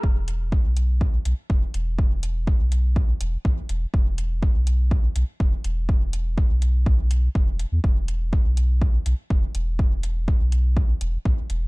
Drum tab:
HH |-x-x-x-x|-x-x-x-x|-x-x-x-x|-x-x-x-x|
BD |o-o-o-o-|o-o-o-o-|o-o-o-o-|o-o-o-o-|

HH |-x-x-x-x|-x-x-x-x|
BD |o-o-o-o-|o-o-o-o-|